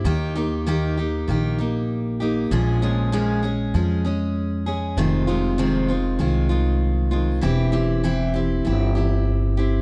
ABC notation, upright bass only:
X:1
M:4/4
L:1/8
Q:1/4=98
K:Fm
V:1 name="Upright bass" clef=bass
E,,4 B,,,4 | B,,,4 F,,4 | F,,,4 C,,4 | =E,,,4 G,,,4 |]